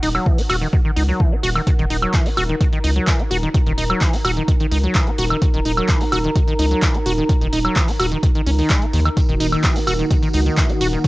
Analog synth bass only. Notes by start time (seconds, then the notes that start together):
0.03 D#1
0.50 D#1
0.97 C#2
1.43 D#1
1.79 D#1
1.90 D#1
2.37 D#1
2.84 C#2
3.31 D#1
3.66 D#1
3.78 D#1
4.25 D#1
4.71 C#2
5.18 D#1
5.54 D#1
5.65 D#1
6.12 D#1
6.59 C#2
7.06 D#1
7.41 D#1
7.53 D#1
8.00 D#1
8.46 C#2
8.93 D#2
9.29 D#1
9.40 D#1
9.87 D#1
10.34 C#2
10.81 D#1